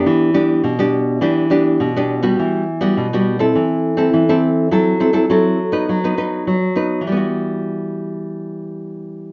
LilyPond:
\new Staff \with { instrumentName = "Nylon-string guitar" } { \time 4/4 \key e \minor \tempo 4 = 103 << { <b d' g'>8 <b d' g'>8. <b d' g'>8. <b d' g'>8 <b d' g'>8. <b d' g'>8 <g b fis'>16~ | <g b fis'>8 r16 <g b fis'>8 <g b fis'>8 <c' e' a'>4 <c' e' a'>8 <c' e' a'>8. | <c' e' a'>8 <c' e' a'>16 <c' e' a'>16 <c' e' a'>8 r16 <b dis' b'>8 <b dis' b'>16 <b dis' b'>8. r16 <b dis' b'>8 | <e g b fis'>1 | } \\ { e4 b,4 e4 b,4 | e4 b,4 e4 e4 | fis4 fis4 fis4 fis4 | r1 | } >> }